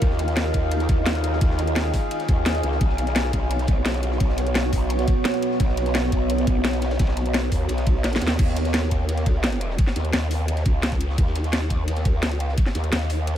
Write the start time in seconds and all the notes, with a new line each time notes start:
Already playing: D#4 F5
0.02 D#2 G#4, kick, closed hi-hat, ride
0.10 snare
0.19 snare, closed hi-hat, ride
0.28 snare, closed hi-hat
0.37 snare, closed hi-hat, ride
0.45 snare
0.54 D#2, kick, closed hi-hat, ride
0.71 closed hi-hat, ride
0.80 snare, closed hi-hat
0.89 D#2, kick, closed hi-hat, ride
1.06 snare, closed hi-hat, ride
1.15 closed hi-hat
1.24 closed hi-hat, ride
1.33 snare
1.41 D#2, kick, closed hi-hat, ride
1.50 snare
1.59 snare, closed hi-hat, ride
1.67 closed hi-hat
1.76 snare, closed hi-hat, ride
1.94 kick, snare, open hi-hat, ride
2.11 closed hi-hat, ride
2.20 snare, closed hi-hat
2.29 D#2, kick, closed hi-hat, ride
2.46 snare, closed hi-hat, ride
2.55 closed hi-hat
2.63 C#2, closed hi-hat, ride
2.72 snare
2.81 B1 B3 F#4 C#5, kick, closed hi-hat, ride
2.89 snare
2.98 snare, closed hi-hat, ride
3.07 snare, closed hi-hat
3.15 snare, closed hi-hat, ride
3.25 snare
3.33 B1, kick, closed hi-hat, ride
3.51 closed hi-hat, ride
3.59 snare, closed hi-hat
3.67 B1, kick, closed hi-hat, ride
3.86 snare, closed hi-hat, ride
3.94 closed hi-hat
4.03 closed hi-hat, ride
4.12 snare
4.20 B1, kick, closed hi-hat, ride
4.29 snare
4.37 snare, closed hi-hat, ride
4.47 closed hi-hat
4.55 snare, closed hi-hat, ride
4.72 B1, kick, open hi-hat, ride
4.90 closed hi-hat, ride
4.99 snare, closed hi-hat
5.08 kick, closed hi-hat, ride
5.25 snare, closed hi-hat, ride
5.34 closed hi-hat
5.42 closed hi-hat, ride
5.51 snare
5.60 B1, kick, closed hi-hat, ride
5.69 snare
5.77 snare, closed hi-hat, ride
5.86 snare, closed hi-hat
5.94 snare, closed hi-hat, ride
6.04 snare
6.12 B1, kick, closed hi-hat, ride
6.30 closed hi-hat, ride
6.38 snare, closed hi-hat
6.47 B1, kick, closed hi-hat, ride
6.64 snare, closed hi-hat, ride
6.73 closed hi-hat
6.82 snare, closed hi-hat, ride
6.91 snare, ride
6.99 B1, kick, snare, closed hi-hat, ride
7.07 snare, ride
7.17 snare, closed hi-hat, ride
7.26 closed hi-hat
7.34 snare, closed hi-hat, ride
7.52 D#2, kick, open hi-hat, ride
7.69 B1, closed hi-hat, ride
7.78 snare, closed hi-hat
7.86 kick, closed hi-hat, ride
8.04 snare, closed hi-hat, ride
8.13 snare, closed hi-hat
8.16 snare
8.21 D#2, snare, closed hi-hat, ride
8.26 snare, ride
8.30 snare, ride
8.39 D#2, kick, closed hi-hat, ride, crash
8.48 snare
8.56 snare, closed hi-hat, ride
8.65 snare, closed hi-hat
8.74 snare, closed hi-hat, ride
8.83 snare
8.91 kick, closed hi-hat, ride
9.09 closed hi-hat, ride
9.18 snare, closed hi-hat
9.26 kick, closed hi-hat, ride
9.44 snare, closed hi-hat, ride
9.52 closed hi-hat
9.61 closed hi-hat, ride
9.70 snare
9.78 kick, closed hi-hat, ride
9.87 snare
9.96 D#2, snare, closed hi-hat, ride
10.05 closed hi-hat
10.13 D#2, snare, closed hi-hat, ride
10.31 open hi-hat, ride
10.48 closed hi-hat, ride
10.57 snare, closed hi-hat
10.65 C#2, kick, closed hi-hat, ride
10.83 snare, closed hi-hat, ride
10.92 kick, closed hi-hat
11.01 closed hi-hat, ride
11.10 snare
11.18 D#2, kick, closed hi-hat, ride
11.27 snare
11.36 snare, closed hi-hat, ride
11.44 snare, closed hi-hat
11.52 snare, closed hi-hat, ride
11.61 snare
11.70 kick, closed hi-hat, ride
11.88 closed hi-hat, ride
11.96 snare, closed hi-hat
12.05 kick, closed hi-hat, ride
12.15 D2
12.23 snare, closed hi-hat, ride
12.31 closed hi-hat
12.40 C#2, closed hi-hat, ride
12.49 snare
12.58 kick, closed hi-hat, ride
12.66 snare
12.75 D#2, snare, closed hi-hat, ride
12.84 closed hi-hat
12.92 D#2, snare, closed hi-hat, ride
13.10 open hi-hat, ride
13.27 closed hi-hat, ride